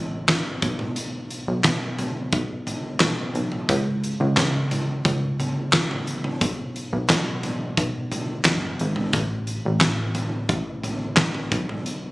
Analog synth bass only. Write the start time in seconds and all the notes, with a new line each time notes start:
Already playing: A1
0.62 B1
1.48 B1
1.65 B1
2.33 B1
3.01 B1
3.35 B1
3.69 C#2
4.20 C#2
4.37 C#2
5.05 C#2
6.41 B1
6.93 B1
7.09 B1
7.78 B1
8.45 F#1
8.81 G#1
9.14 A1
9.65 A1
9.81 A1
10.49 A1
11.52 B1